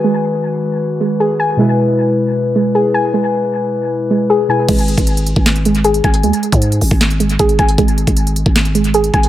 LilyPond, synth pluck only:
\new Staff \with { instrumentName = "Synth pluck" } { \time 4/4 \key gis \minor \tempo 4 = 155 <gis gis' gis''>2~ <gis gis' gis''>8 gis8 gis'8 gis''8 | gis2~ gis8 gis8 gis'8 gis''8 | gis2~ gis8 gis8 gis'8 gis''8 | gis2~ gis8 gis8 gis'8 gis''8 |
gis2~ gis8 gis8 gis'8 gis''8 | gis2~ gis8 gis8 gis'8 gis''8 | }